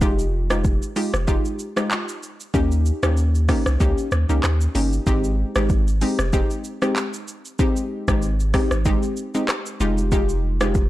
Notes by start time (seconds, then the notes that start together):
Already playing: F1
0.01 G#3 D#4 F4 G4, kick, shaker
0.19 shaker
0.50 G#3 D#4 F4 G4, cross-stick, shaker
0.64 kick, shaker
0.82 shaker
0.96 G#3 D#4 F4 G4, open hi-hat, shaker
1.14 F1, cross-stick, shaker
1.27 G#3 D#4 F4 G4, kick, shaker
1.45 shaker
1.59 shaker
1.76 G#3 D#4 F4 G4, cross-stick, shaker
1.91 clap, shaker
2.09 shaker
2.23 shaker
2.40 shaker
2.54 D#2 A#3 C#4 D#4 G4, kick, shaker
2.72 shaker
2.86 shaker
3.03 D#2 A#3 C#4 D#4 G4, cross-stick, shaker
3.17 shaker
3.35 shaker
3.48 A#3 C#4 D#4 G4, kick, cross-stick, open hi-hat, shaker
3.66 C2, cross-stick, shaker
3.80 C#2 A#3 C#4 D#4 G4, kick, shaker
3.98 shaker
4.12 D#2, cross-stick, shaker
4.29 C#2 A#3 C#4 D#4 G4, shaker
4.43 D#2, cross-stick, clap, shaker
4.61 shaker
4.75 G1 A#3 C#4 D#4 G4, open hi-hat, shaker
4.93 shaker
5.07 G#1 G#3 C4 D#4 G4, kick, shaker
5.24 shaker
5.56 G#1 G#3 C4 D#4 G4, cross-stick, shaker
5.69 kick, shaker
5.88 shaker
6.01 G#3 C4 D#4 G4, open hi-hat, shaker
6.19 F1, cross-stick, shaker
6.33 G#3 C4 D#4 G4, kick, shaker
6.50 shaker
6.64 shaker
6.82 G#3 C4 D#4 G4, cross-stick, shaker
6.96 clap, shaker
7.14 shaker
7.28 shaker
7.45 shaker
7.59 G#3 C4 D#4 G4, kick, shaker
7.76 shaker
8.08 G#1 G#3 C4 D#4 G4, kick, cross-stick, shaker
8.22 shaker
8.40 shaker
8.54 G#3 C4 D#4 G4, kick, cross-stick, open hi-hat, shaker
8.71 G#1, cross-stick, shaker
8.85 G#3 C4 D#4 G4, kick, shaker
9.03 shaker
9.17 shaker
9.35 G#3 C4 D#4 G4, shaker
9.49 cross-stick, clap, shaker
9.66 shaker
9.80 F1 G#3 D#4 F4 G4, shaker
9.98 shaker
10.12 G#3 D#4 F4 G4, kick, shaker
10.29 shaker
10.61 G#3 D#4 F4 G4, cross-stick, shaker
10.75 kick, shaker